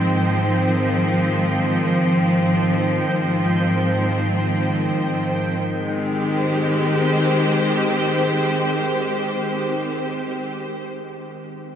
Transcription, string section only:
0.00 5.60 G#2 medium
0.00 5.58 D#3 medium
0.00 5.60 F3 medium
0.00 5.60 C4 medium
0.00 5.61 C5 medium
0.00 5.60 G5 medium
5.59 10.15 D#3 medium
5.74 10.30 G#3 medium
5.94 10.50 C4 medium
6.12 10.68 G4 medium
6.31 10.87 C5 medium

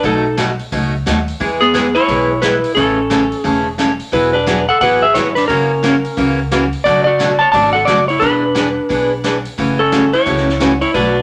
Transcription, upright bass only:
0.04 0.58 B1 medium
0.72 1.01 C#2 medium
1.06 1.35 D#2 medium
1.40 1.95 E2 medium
2.08 2.63 B1 medium
2.77 3.31 A1 medium
3.44 3.99 E1 medium
4.13 4.67 E1 medium
4.81 5.10 A1 medium
5.15 5.44 G#1 medium
5.49 6.04 F#1 medium
6.17 6.72 C#2 medium
6.85 7.40 F#1 medium
7.53 7.83 G#1 medium
7.87 8.17 F#1 medium
8.22 8.76 E1 medium
8.90 9.44 B1 medium
9.58 10.13 F#1 medium
10.26 10.81 C#2 medium
10.94 11.22 B1 medium

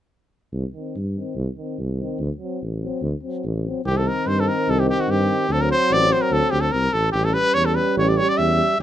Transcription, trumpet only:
3.86 3.99 G4 medium
3.97 4.09 A4 medium
4.07 4.29 A#4 medium
4.27 4.41 C5 medium
4.40 4.49 A4 medium
4.48 4.71 A#4 medium
4.70 4.81 A4 medium
4.80 4.89 G4 medium
4.89 5.02 G4 medium
5.00 5.12 F#4 medium
5.10 5.54 G4 medium
5.52 5.63 A4 medium
5.61 5.71 A#4 medium
5.71 5.94 C5 medium
5.93 6.14 D5 loud
6.12 6.23 C5 medium
6.22 6.34 A#4 medium
6.33 6.52 A4 medium
6.51 6.62 G4 medium
6.61 6.73 A4 medium
6.72 6.95 A#4 medium
6.93 7.11 A4 medium
7.12 7.26 G4 medium
7.25 7.35 A4 medium
7.34 7.56 B4 medium
7.54 7.67 C#5 loud
7.66 7.77 A4 medium
7.75 7.96 B4 medium
7.98 8.10 C#5 medium
8.09 8.18 D5 medium
8.17 8.30 C#5 medium
8.29 8.39 D5 medium
8.37 8.79 E5 medium

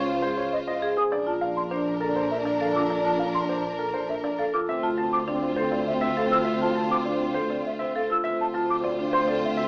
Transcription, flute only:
0.52 0.58 D#5 medium
0.82 0.88 F5 medium
0.98 1.04 D#6 medium
1.27 1.33 A5 soft
1.57 1.63 C6 medium
2.31 2.37 E5 medium
2.61 2.67 F5 medium
2.76 2.82 D6 medium
3.05 3.11 A5 soft
3.35 3.41 C6 medium
4.09 4.15 E5 medium
4.39 4.45 F5 medium
4.54 4.60 D6 medium
4.83 4.89 A5 medium
5.13 5.19 D6 medium
5.88 5.94 E5 medium
6.18 6.24 F5 medium
6.32 6.38 E6 medium
6.62 6.68 A5 soft
6.91 6.97 D6 medium
7.66 7.72 E5 medium
7.96 8.02 F5 medium
8.11 8.17 E6 medium
8.41 8.47 A5 medium
8.70 8.76 D6 medium
9.14 9.20 C6 medium
9.45 9.51 E5 medium

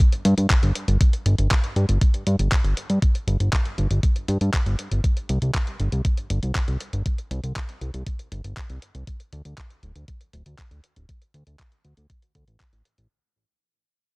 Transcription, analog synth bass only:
0.25 0.34 G2 loud
0.38 0.47 G2 medium
0.63 0.72 G1 medium
0.88 0.97 G1 medium
1.26 1.35 G1 medium
1.39 1.48 G1 medium
1.76 1.86 G2 medium
1.89 1.98 G1 medium
2.27 2.36 G2 loud
2.39 2.49 G1 medium
2.64 2.74 G1 medium
2.90 2.99 G2 medium
3.28 3.37 G1 medium
3.40 3.50 G1 medium
3.78 3.87 G1 medium
3.91 4.00 G1 medium
4.28 4.38 G2 medium
4.41 4.50 G2 medium
4.66 4.76 G1 medium
4.92 5.01 G1 medium
5.29 5.39 C2 loud
5.42 5.51 C2 medium
5.80 5.89 G1 medium
5.92 6.02 C2 medium
6.30 6.40 G1 medium
6.43 6.52 C2 medium
6.68 6.77 C2 medium
6.93 7.03 G1 medium
7.31 7.40 C2 medium
7.44 7.53 C2 medium
7.81 7.91 C2 medium
7.94 8.03 C2 medium
8.32 8.41 G1 medium
8.45 8.54 G1 medium
8.70 8.79 C2 medium
8.95 9.04 C2 medium
9.33 9.42 D2 medium
9.45 9.55 D2 medium
9.83 9.92 D1 medium
9.96 10.05 D2 medium
10.34 10.43 D1 medium
10.46 10.55 D2 medium
10.71 10.81 D2 medium
10.97 11.06 D1 medium
11.34 11.44 D2 medium
11.47 11.56 D2 medium
11.85 11.94 D2 medium
11.97 12.07 D2 medium
12.35 12.45 D2 medium
12.48 12.57 A1 medium
12.73 12.82 A1 medium
12.98 13.08 A1 medium

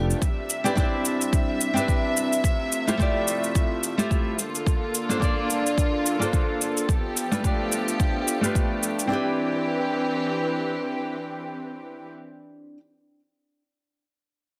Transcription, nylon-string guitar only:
0.00 0.19 A3 medium
0.00 0.20 D4 medium
0.00 0.20 F4 medium
0.00 0.21 G4 medium
0.00 0.21 B4 medium
0.64 0.74 C4 medium
0.64 0.74 D4 medium
0.64 0.74 E4 medium
0.64 0.74 G4 medium
0.64 0.75 B4 medium
0.75 1.72 C4 medium
0.75 1.72 D4 medium
0.75 1.73 E4 medium
0.75 1.73 G4 medium
0.80 1.74 C5 medium
1.74 2.41 C4 medium
1.74 2.42 D4 medium
1.74 2.42 E4 medium
1.74 2.43 G4 medium
1.78 2.43 B4 medium
2.87 2.96 A3 medium
2.87 2.97 E4 medium
2.87 2.97 F4 medium
2.87 2.97 G4 medium
2.87 2.97 C5 medium
2.97 3.94 A3 medium
2.97 3.94 E4 medium
2.97 3.95 F4 medium
2.97 3.95 G4 medium
3.02 3.96 D5 medium
3.98 4.36 A3 medium
3.98 4.37 E4 medium
3.98 4.37 F4 medium
3.98 4.37 G4 medium
3.98 4.37 C5 medium
5.09 5.18 A#3 medium
5.09 5.19 D4 medium
5.09 5.19 F4 medium
5.09 5.19 A4 medium
5.09 5.19 C5 medium
5.19 6.16 A#3 medium
5.19 6.17 D4 medium
5.19 6.17 F4 medium
5.19 6.17 A4 medium
5.24 6.18 D5 medium
6.19 6.86 A#3 medium
6.19 6.86 D4 medium
6.19 6.87 F4 medium
6.19 6.87 A4 medium
6.19 6.88 C5 medium
7.31 7.41 A3 medium
7.31 7.41 D4 medium
7.31 7.41 F4 medium
7.31 7.41 G4 medium
7.31 7.42 B4 medium
7.43 8.39 A3 medium
7.43 8.39 D4 medium
7.43 8.39 F4 medium
7.43 8.40 G4 medium
7.47 8.41 D5 medium
8.41 9.07 A3 medium
8.41 9.08 D4 medium
8.41 9.09 F4 medium
8.41 9.09 G4 medium
8.41 9.10 B4 medium
9.07 12.77 C4 medium
9.07 12.78 D4 medium
9.07 12.79 E4 medium
9.12 12.79 G4 medium
9.12 12.80 B4 medium

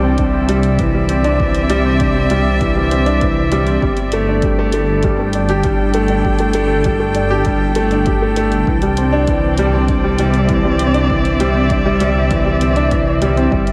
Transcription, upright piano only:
0.00 0.79 E3 medium
0.00 0.49 G3 loud
0.00 0.03 C4 medium
0.00 0.17 C4 medium
0.00 0.18 D4 loud
0.18 0.27 D4 medium
0.33 0.48 C4 medium
0.49 0.63 G3 loud
0.79 0.88 E3 medium
0.94 1.09 G3 medium
1.09 1.24 C4 medium
1.24 1.39 D4 loud
1.40 1.54 E3 medium
1.70 1.79 G3 loud
1.85 2.00 C4 medium
2.00 2.09 D4 medium
2.15 2.30 C4 medium
2.31 2.45 G3 loud
2.61 2.70 E3 medium
2.76 2.90 G3 medium
2.91 3.06 C4 medium
3.06 3.21 D4 loud
3.22 3.36 E3 medium
3.52 3.61 G3 loud
3.67 3.82 C4 medium
3.82 3.97 G3 medium
4.13 4.22 A3 loud
4.28 4.42 D4 medium
4.44 4.52 G4 medium
4.59 4.72 A3 loud
4.74 4.88 A3 medium
5.04 5.12 G3 medium
5.20 5.34 A3 medium
5.35 5.49 D4 medium
5.49 5.64 G4 loud
5.64 5.79 G3 medium
5.94 6.03 A3 loud
6.10 6.24 D4 medium
6.24 6.33 G4 medium
6.40 6.53 A3 medium
6.55 6.69 A3 loud
6.85 6.94 G3 medium
7.00 7.15 A3 medium
7.15 7.30 D4 medium
7.30 7.45 G4 loud
7.46 7.60 G3 medium
7.76 7.85 A3 loud
7.92 8.06 D4 medium
8.07 8.15 G4 medium
8.22 8.35 A3 loud
8.37 8.51 A3 loud
8.68 8.76 E3 medium
8.82 8.97 G3 medium
8.98 9.12 C4 medium
9.12 9.27 D4 loud
9.28 9.43 E3 medium
9.59 9.67 G3 loud
9.74 9.88 C4 medium
9.89 9.97 D4 medium
10.04 10.18 G3 medium
10.19 10.33 G3 loud
10.49 10.58 E3 medium
10.64 10.79 G3 medium
10.80 10.94 C4 medium
10.94 11.09 D4 medium
11.10 11.24 E3 medium
11.40 11.49 G3 loud
11.55 11.70 C4 medium
11.71 11.79 D4 medium
11.85 11.99 G3 loud
12.01 12.15 G3 medium
12.31 12.39 E3 medium
12.46 12.60 G3 medium
12.62 12.76 C4 medium
12.76 12.91 D4 loud
12.92 13.06 E3 medium
13.22 13.30 G3 loud
13.37 13.51 C4 medium
13.51 13.66 G3 medium

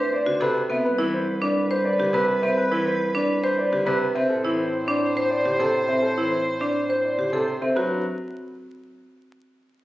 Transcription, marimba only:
0.00 0.16 B4 medium
0.26 0.45 F#4 medium
0.41 0.59 A4 medium
0.70 0.88 C4 medium
0.99 1.17 E4 medium
1.42 1.60 D4 medium
1.71 1.89 C5 medium
2.00 2.18 G4 medium
2.14 2.33 B4 medium
2.43 2.61 C4 medium
2.72 2.90 E4 medium
3.15 3.33 D4 loud
3.44 3.62 C5 medium
3.73 3.91 G4 medium
3.87 4.05 B4 medium
4.16 4.34 C4 medium
4.45 4.63 E4 loud
4.88 5.07 D4 medium
5.17 5.35 C5 medium
5.45 5.64 G4 medium
5.60 5.79 A4 medium
5.89 6.07 C4 medium
6.18 6.36 E4 medium
6.61 6.80 D4 medium
6.90 7.08 C5 medium
7.19 7.37 G4 medium
7.33 7.52 A4 medium
7.62 7.81 C4 medium
7.77 8.03 F#4 medium

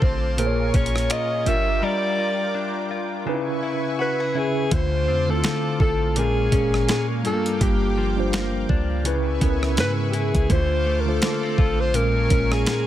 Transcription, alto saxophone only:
0.03 0.40 C5 medium
0.39 0.77 A#4 loud
0.75 1.13 C#5 loud
1.12 1.49 D#5 loud
1.48 1.86 E5 loud
1.84 2.92 D5 loud
4.01 4.39 B4 loud
4.38 4.75 G#4 loud
4.73 5.32 C5 loud
5.30 5.81 A4 loud
5.81 6.14 A4 loud
6.18 6.85 G#4 loud
6.90 7.06 G#4 medium
7.26 7.64 A4 medium
7.63 8.34 G4 medium
9.79 9.93 B4 loud
10.09 10.17 G4 medium
10.16 10.53 G#4 loud
10.51 11.01 C5 loud
11.00 11.10 A#4 medium
11.08 11.59 A4 loud
11.59 11.82 A4 medium
11.80 11.96 C5 loud
11.95 12.54 A#4 loud
12.52 12.87 G#4 loud

